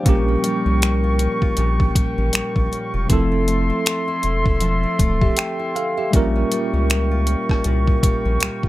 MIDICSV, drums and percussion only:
0, 0, Header, 1, 2, 480
1, 0, Start_track
1, 0, Tempo, 759494
1, 37, Time_signature, 4, 2, 24, 8
1, 5491, End_track
2, 0, Start_track
2, 0, Title_t, "Drums"
2, 36, Note_on_c, 9, 42, 69
2, 37, Note_on_c, 9, 36, 102
2, 100, Note_off_c, 9, 36, 0
2, 100, Note_off_c, 9, 42, 0
2, 277, Note_on_c, 9, 42, 66
2, 340, Note_off_c, 9, 42, 0
2, 519, Note_on_c, 9, 42, 69
2, 525, Note_on_c, 9, 26, 99
2, 582, Note_off_c, 9, 42, 0
2, 588, Note_off_c, 9, 26, 0
2, 754, Note_on_c, 9, 42, 60
2, 817, Note_off_c, 9, 42, 0
2, 897, Note_on_c, 9, 36, 82
2, 960, Note_off_c, 9, 36, 0
2, 991, Note_on_c, 9, 42, 59
2, 1054, Note_off_c, 9, 42, 0
2, 1137, Note_on_c, 9, 36, 84
2, 1200, Note_off_c, 9, 36, 0
2, 1235, Note_on_c, 9, 36, 94
2, 1237, Note_on_c, 9, 42, 77
2, 1299, Note_off_c, 9, 36, 0
2, 1301, Note_off_c, 9, 42, 0
2, 1472, Note_on_c, 9, 42, 74
2, 1486, Note_on_c, 9, 26, 108
2, 1535, Note_off_c, 9, 42, 0
2, 1550, Note_off_c, 9, 26, 0
2, 1616, Note_on_c, 9, 36, 88
2, 1680, Note_off_c, 9, 36, 0
2, 1723, Note_on_c, 9, 42, 49
2, 1786, Note_off_c, 9, 42, 0
2, 1957, Note_on_c, 9, 36, 110
2, 1957, Note_on_c, 9, 42, 73
2, 2020, Note_off_c, 9, 36, 0
2, 2020, Note_off_c, 9, 42, 0
2, 2198, Note_on_c, 9, 42, 67
2, 2261, Note_off_c, 9, 42, 0
2, 2440, Note_on_c, 9, 42, 74
2, 2446, Note_on_c, 9, 26, 100
2, 2503, Note_off_c, 9, 42, 0
2, 2509, Note_off_c, 9, 26, 0
2, 2673, Note_on_c, 9, 42, 65
2, 2737, Note_off_c, 9, 42, 0
2, 2816, Note_on_c, 9, 36, 86
2, 2880, Note_off_c, 9, 36, 0
2, 2910, Note_on_c, 9, 42, 60
2, 2974, Note_off_c, 9, 42, 0
2, 3155, Note_on_c, 9, 36, 96
2, 3157, Note_on_c, 9, 42, 72
2, 3218, Note_off_c, 9, 36, 0
2, 3220, Note_off_c, 9, 42, 0
2, 3296, Note_on_c, 9, 36, 86
2, 3359, Note_off_c, 9, 36, 0
2, 3391, Note_on_c, 9, 42, 74
2, 3405, Note_on_c, 9, 26, 106
2, 3454, Note_off_c, 9, 42, 0
2, 3468, Note_off_c, 9, 26, 0
2, 3641, Note_on_c, 9, 42, 48
2, 3705, Note_off_c, 9, 42, 0
2, 3876, Note_on_c, 9, 36, 114
2, 3876, Note_on_c, 9, 42, 71
2, 3939, Note_off_c, 9, 36, 0
2, 3940, Note_off_c, 9, 42, 0
2, 4118, Note_on_c, 9, 42, 71
2, 4181, Note_off_c, 9, 42, 0
2, 4360, Note_on_c, 9, 42, 74
2, 4366, Note_on_c, 9, 26, 98
2, 4424, Note_off_c, 9, 42, 0
2, 4429, Note_off_c, 9, 26, 0
2, 4593, Note_on_c, 9, 42, 61
2, 4657, Note_off_c, 9, 42, 0
2, 4737, Note_on_c, 9, 36, 84
2, 4747, Note_on_c, 9, 37, 65
2, 4800, Note_off_c, 9, 36, 0
2, 4810, Note_off_c, 9, 37, 0
2, 4831, Note_on_c, 9, 42, 61
2, 4894, Note_off_c, 9, 42, 0
2, 4977, Note_on_c, 9, 36, 84
2, 5040, Note_off_c, 9, 36, 0
2, 5075, Note_on_c, 9, 36, 95
2, 5078, Note_on_c, 9, 42, 74
2, 5139, Note_off_c, 9, 36, 0
2, 5141, Note_off_c, 9, 42, 0
2, 5312, Note_on_c, 9, 42, 76
2, 5326, Note_on_c, 9, 26, 110
2, 5375, Note_off_c, 9, 42, 0
2, 5389, Note_off_c, 9, 26, 0
2, 5456, Note_on_c, 9, 36, 90
2, 5491, Note_off_c, 9, 36, 0
2, 5491, End_track
0, 0, End_of_file